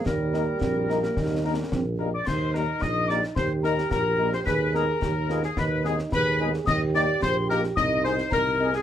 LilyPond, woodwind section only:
\new Staff \with { instrumentName = "Woodwind section" } { \time 2/4 \key ees \major \tempo 4 = 109 bes'2~ | bes'4. r16 d''16 | c''8 bes'8 ees''8 d''8 | c''8 bes'8 bes'8. c''16 |
ces''8 bes'4~ bes'16 aes'16 | ces''8 aes'8 ces''8. r16 | ees''8 d''8 c''8 bes'8 | ees''8 c''8 bes'8. aes'16 | }